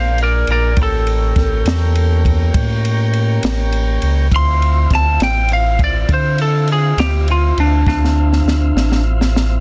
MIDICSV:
0, 0, Header, 1, 5, 480
1, 0, Start_track
1, 0, Key_signature, -1, "minor"
1, 0, Tempo, 590726
1, 624, Time_signature, 12, 3, 24, 8
1, 7802, End_track
2, 0, Start_track
2, 0, Title_t, "Lead electric guitar"
2, 0, Program_c, 0, 29
2, 0, Note_on_c, 0, 72, 82
2, 0, Note_on_c, 0, 77, 99
2, 147, Note_off_c, 0, 72, 0
2, 160, Note_off_c, 0, 77, 0
2, 184, Note_on_c, 0, 70, 78
2, 191, Note_on_c, 0, 74, 84
2, 389, Note_off_c, 0, 70, 0
2, 401, Note_off_c, 0, 74, 0
2, 417, Note_on_c, 0, 70, 77
2, 422, Note_on_c, 0, 74, 79
2, 626, Note_off_c, 0, 70, 0
2, 635, Note_off_c, 0, 74, 0
2, 672, Note_on_c, 0, 69, 85
2, 2056, Note_off_c, 0, 69, 0
2, 3541, Note_on_c, 0, 84, 86
2, 3989, Note_off_c, 0, 84, 0
2, 4022, Note_on_c, 0, 81, 76
2, 4237, Note_off_c, 0, 81, 0
2, 4252, Note_on_c, 0, 79, 87
2, 4472, Note_off_c, 0, 79, 0
2, 4496, Note_on_c, 0, 77, 95
2, 4713, Note_off_c, 0, 77, 0
2, 4744, Note_on_c, 0, 74, 88
2, 4958, Note_off_c, 0, 74, 0
2, 4986, Note_on_c, 0, 72, 82
2, 5199, Note_off_c, 0, 72, 0
2, 5214, Note_on_c, 0, 69, 85
2, 5432, Note_off_c, 0, 69, 0
2, 5464, Note_on_c, 0, 68, 85
2, 5677, Note_off_c, 0, 68, 0
2, 5683, Note_on_c, 0, 67, 93
2, 5906, Note_off_c, 0, 67, 0
2, 5943, Note_on_c, 0, 65, 80
2, 6157, Note_off_c, 0, 65, 0
2, 6175, Note_on_c, 0, 62, 96
2, 6393, Note_off_c, 0, 62, 0
2, 6403, Note_on_c, 0, 62, 92
2, 7324, Note_off_c, 0, 62, 0
2, 7802, End_track
3, 0, Start_track
3, 0, Title_t, "Tonewheel organ"
3, 0, Program_c, 1, 16
3, 0, Note_on_c, 1, 58, 62
3, 0, Note_on_c, 1, 62, 67
3, 0, Note_on_c, 1, 68, 63
3, 596, Note_off_c, 1, 58, 0
3, 598, Note_off_c, 1, 62, 0
3, 599, Note_off_c, 1, 68, 0
3, 620, Note_on_c, 1, 61, 66
3, 626, Note_on_c, 1, 58, 67
3, 628, Note_on_c, 1, 67, 61
3, 3474, Note_off_c, 1, 61, 0
3, 3476, Note_off_c, 1, 58, 0
3, 3478, Note_off_c, 1, 67, 0
3, 3516, Note_on_c, 1, 64, 74
3, 3521, Note_on_c, 1, 65, 63
3, 3522, Note_on_c, 1, 60, 71
3, 6360, Note_off_c, 1, 64, 0
3, 6363, Note_off_c, 1, 65, 0
3, 6364, Note_off_c, 1, 60, 0
3, 6391, Note_on_c, 1, 60, 66
3, 6394, Note_on_c, 1, 64, 69
3, 6395, Note_on_c, 1, 65, 68
3, 7802, Note_off_c, 1, 60, 0
3, 7802, Note_off_c, 1, 64, 0
3, 7802, Note_off_c, 1, 65, 0
3, 7802, End_track
4, 0, Start_track
4, 0, Title_t, "Sub bass"
4, 0, Program_c, 2, 38
4, 0, Note_on_c, 2, 34, 87
4, 353, Note_off_c, 2, 34, 0
4, 385, Note_on_c, 2, 34, 86
4, 606, Note_off_c, 2, 34, 0
4, 632, Note_on_c, 2, 33, 96
4, 1076, Note_off_c, 2, 33, 0
4, 1109, Note_on_c, 2, 33, 84
4, 1328, Note_off_c, 2, 33, 0
4, 1341, Note_on_c, 2, 40, 98
4, 2030, Note_off_c, 2, 40, 0
4, 2069, Note_on_c, 2, 45, 92
4, 2754, Note_off_c, 2, 45, 0
4, 2790, Note_on_c, 2, 33, 84
4, 3235, Note_off_c, 2, 33, 0
4, 3267, Note_on_c, 2, 37, 91
4, 3487, Note_off_c, 2, 37, 0
4, 3510, Note_on_c, 2, 38, 100
4, 3955, Note_off_c, 2, 38, 0
4, 3991, Note_on_c, 2, 38, 81
4, 4209, Note_off_c, 2, 38, 0
4, 4226, Note_on_c, 2, 33, 102
4, 4913, Note_off_c, 2, 33, 0
4, 4946, Note_on_c, 2, 50, 91
4, 5633, Note_off_c, 2, 50, 0
4, 5663, Note_on_c, 2, 38, 89
4, 6111, Note_off_c, 2, 38, 0
4, 6152, Note_on_c, 2, 38, 92
4, 6369, Note_off_c, 2, 38, 0
4, 6398, Note_on_c, 2, 38, 108
4, 6838, Note_off_c, 2, 38, 0
4, 6862, Note_on_c, 2, 38, 76
4, 7083, Note_off_c, 2, 38, 0
4, 7110, Note_on_c, 2, 33, 110
4, 7794, Note_off_c, 2, 33, 0
4, 7802, End_track
5, 0, Start_track
5, 0, Title_t, "Drums"
5, 147, Note_on_c, 9, 51, 58
5, 229, Note_off_c, 9, 51, 0
5, 385, Note_on_c, 9, 51, 64
5, 466, Note_off_c, 9, 51, 0
5, 623, Note_on_c, 9, 51, 70
5, 625, Note_on_c, 9, 36, 93
5, 704, Note_off_c, 9, 51, 0
5, 706, Note_off_c, 9, 36, 0
5, 867, Note_on_c, 9, 51, 54
5, 949, Note_off_c, 9, 51, 0
5, 1104, Note_on_c, 9, 36, 86
5, 1104, Note_on_c, 9, 51, 61
5, 1119, Note_on_c, 9, 38, 32
5, 1185, Note_off_c, 9, 36, 0
5, 1185, Note_off_c, 9, 51, 0
5, 1201, Note_off_c, 9, 38, 0
5, 1346, Note_on_c, 9, 51, 80
5, 1362, Note_on_c, 9, 38, 109
5, 1428, Note_off_c, 9, 51, 0
5, 1443, Note_off_c, 9, 38, 0
5, 1588, Note_on_c, 9, 51, 60
5, 1669, Note_off_c, 9, 51, 0
5, 1829, Note_on_c, 9, 36, 77
5, 1833, Note_on_c, 9, 51, 66
5, 1910, Note_off_c, 9, 36, 0
5, 1914, Note_off_c, 9, 51, 0
5, 2066, Note_on_c, 9, 36, 112
5, 2066, Note_on_c, 9, 51, 97
5, 2147, Note_off_c, 9, 51, 0
5, 2148, Note_off_c, 9, 36, 0
5, 2314, Note_on_c, 9, 51, 70
5, 2395, Note_off_c, 9, 51, 0
5, 2547, Note_on_c, 9, 51, 69
5, 2628, Note_off_c, 9, 51, 0
5, 2786, Note_on_c, 9, 51, 88
5, 2802, Note_on_c, 9, 38, 114
5, 2867, Note_off_c, 9, 51, 0
5, 2883, Note_off_c, 9, 38, 0
5, 3026, Note_on_c, 9, 51, 68
5, 3108, Note_off_c, 9, 51, 0
5, 3265, Note_on_c, 9, 51, 64
5, 3347, Note_off_c, 9, 51, 0
5, 3506, Note_on_c, 9, 36, 108
5, 3509, Note_on_c, 9, 51, 77
5, 3588, Note_off_c, 9, 36, 0
5, 3590, Note_off_c, 9, 51, 0
5, 3755, Note_on_c, 9, 51, 55
5, 3837, Note_off_c, 9, 51, 0
5, 3985, Note_on_c, 9, 36, 75
5, 3986, Note_on_c, 9, 51, 56
5, 4001, Note_on_c, 9, 38, 35
5, 4066, Note_off_c, 9, 36, 0
5, 4067, Note_off_c, 9, 51, 0
5, 4082, Note_off_c, 9, 38, 0
5, 4226, Note_on_c, 9, 51, 75
5, 4242, Note_on_c, 9, 38, 94
5, 4307, Note_off_c, 9, 51, 0
5, 4323, Note_off_c, 9, 38, 0
5, 4457, Note_on_c, 9, 51, 62
5, 4539, Note_off_c, 9, 51, 0
5, 4705, Note_on_c, 9, 36, 83
5, 4706, Note_on_c, 9, 51, 64
5, 4786, Note_off_c, 9, 36, 0
5, 4788, Note_off_c, 9, 51, 0
5, 4946, Note_on_c, 9, 36, 118
5, 4947, Note_on_c, 9, 51, 78
5, 5028, Note_off_c, 9, 36, 0
5, 5028, Note_off_c, 9, 51, 0
5, 5186, Note_on_c, 9, 51, 64
5, 5268, Note_off_c, 9, 51, 0
5, 5424, Note_on_c, 9, 51, 61
5, 5505, Note_off_c, 9, 51, 0
5, 5673, Note_on_c, 9, 51, 81
5, 5689, Note_on_c, 9, 38, 121
5, 5754, Note_off_c, 9, 51, 0
5, 5770, Note_off_c, 9, 38, 0
5, 5913, Note_on_c, 9, 51, 62
5, 5995, Note_off_c, 9, 51, 0
5, 6157, Note_on_c, 9, 51, 65
5, 6238, Note_off_c, 9, 51, 0
5, 6391, Note_on_c, 9, 36, 106
5, 6407, Note_on_c, 9, 38, 53
5, 6472, Note_off_c, 9, 36, 0
5, 6488, Note_off_c, 9, 38, 0
5, 6537, Note_on_c, 9, 38, 55
5, 6619, Note_off_c, 9, 38, 0
5, 6766, Note_on_c, 9, 38, 45
5, 6847, Note_off_c, 9, 38, 0
5, 6889, Note_on_c, 9, 38, 72
5, 6971, Note_off_c, 9, 38, 0
5, 7124, Note_on_c, 9, 38, 74
5, 7206, Note_off_c, 9, 38, 0
5, 7246, Note_on_c, 9, 38, 68
5, 7327, Note_off_c, 9, 38, 0
5, 7485, Note_on_c, 9, 38, 68
5, 7566, Note_off_c, 9, 38, 0
5, 7609, Note_on_c, 9, 38, 80
5, 7690, Note_off_c, 9, 38, 0
5, 7802, End_track
0, 0, End_of_file